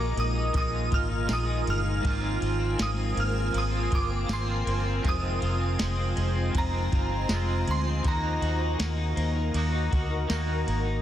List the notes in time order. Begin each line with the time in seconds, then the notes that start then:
Already playing: A#1 A#2 D#3 G#3 D#4 F4 A#4 D#5 G#5 D6
0.16 A#1 G#3 D#6, ride
0.35 D#4
0.53 A#1 A#2 D#3 G#3 D#4, kick, ride
0.57 F4 D#6
0.72 D#4
0.91 G#1 F4 F6, kick, ride
1.09 D#4
1.27 A#1 D#3 G#3, snare, ride, tambourine
1.31 D#4 F4 D#6
1.46 D#4
1.65 G1 G#3, ride
1.70 F6
1.84 D#4
2.01 G#1 G#2 D#3 F3, kick, ride
2.06 A#3 C4 C5
2.10 F4
2.21 C4
2.40 G#1 F4, ride
2.59 C4
2.77 G#1 A#3, snare, ride, tambourine
2.82 D#6
2.97 C4
3.14 G#1 A#3, ride
3.20 F6
3.33 C4
3.53 G#1 F3 A#3, ride
3.57 C4 F4 D#6
3.71 C4
3.91 G1 F4, kick, ride
3.95 D6
4.10 C4
4.26 G#1 F3 A#3, snare, ride, tambourine
4.30 C4 F4 C6
4.47 C4
4.65 G1 A#3, ride
4.84 C4
5.02 F1 F2 C3 D#3 G#3 C4 F4 D#5, kick, ride
5.09 D#6
5.22 C4
5.39 F1 C4 F4, ride
5.44 D#3 G#3
5.60 C4
5.78 F1 G#3, snare, ride, tambourine
5.97 C4
6.16 F1 G#3, ride
6.35 C4
6.52 F1 F2 D#3 G#3, kick, ride
6.56 C4 F4 A#5
6.73 C4
6.92 G1 F4, kick, ride
7.11 C4
7.29 F1 G#3 C4, snare, ride, tambourine
7.34 F4
7.48 C4
7.67 D2 G#3 C6, ride
7.86 C4
8.03 D#2 D#3 A#3 D#4 F#4 A#4 A#5, kick, ride
8.08 F#4 A#5
8.23 D#4
8.40 D#2 D#4 F#4, ride
8.46 A#3
8.60 D#4
8.78 D#2 A#3, snare, ride, tambourine
8.97 D#4
9.16 D#2 A#3, ride
9.35 D#4
9.54 D#2 A#3 D#4, ride
9.59 F#4
9.72 D#4
9.91 D2 F#4, kick, ride
10.10 D#4
10.28 D#2 D#3 A#3, snare, ride, tambourine
10.32 D#4 F#4
10.48 D#4
10.66 G#1 A#3, ride
10.85 D#4